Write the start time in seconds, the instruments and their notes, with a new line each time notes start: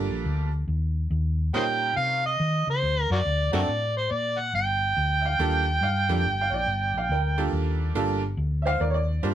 Already playing: honky-tonk piano G3 A#3 D4 F4 A4, upright piano G4
0.10 fingered electric bass A#1
0.25 fingered electric bass D2
0.68 fingered electric bass D#2
1.10 fingered electric bass D#2
1.54 fingered electric bass A#2, honky-tonk piano G3 C#4 D#4 F4 A#4, harmonica C5 D#5 G5
1.96 fingered electric bass C3, harmonica F5
2.26 harmonica D#5
2.40 fingered electric bass D#3
2.67 fingered electric bass C#3, harmonica C5
2.82 fingered electric bass D2
3.10 fingered electric bass F#2, harmonica F#4 A#4 D5
3.25 fingered electric bass D2
3.53 fingered electric bass F#2, honky-tonk piano A3 C4 D4 F#4 A4, harmonica F#4 A#4 D5
3.68 fingered electric bass A2
3.97 harmonica C5
4.11 fingered electric bass A#2, harmonica D5
4.39 harmonica F#5
4.53 fingered electric bass G1, harmonica G5
4.97 fingered electric bass D2
5.21 upright piano E5
5.25 upright piano F5
5.39 fingered electric bass D#2, honky-tonk piano G3 A#3 D4 F4 A4
5.81 fingered electric bass G2, upright piano F5
6.09 fingered electric bass F2, honky-tonk piano G3 A#3 D4 F4 A4, upright piano G5
6.24 fingered electric bass G1
6.41 upright piano F5
6.50 fingered electric bass A#1, upright piano C#5
6.54 upright piano D5
6.66 fingered electric bass G1
6.94 fingered electric bass A#1, upright piano F5
7.09 fingered electric bass D2, upright piano A#4 G5
7.38 honky-tonk piano G3 A#3 D4 F4 A4
7.52 fingered electric bass D#2
7.95 fingered electric bass G1, honky-tonk piano G3 A#3 D4 F4 A4
8.37 fingered electric bass D2
8.62 upright piano C5 E5
8.66 upright piano F5
8.80 fingered electric bass D#2, upright piano A#4 D5
8.90 upright piano C#5
8.94 upright piano D5
9.23 fingered electric bass G2, honky-tonk piano G3 A#3 D4 F4 C5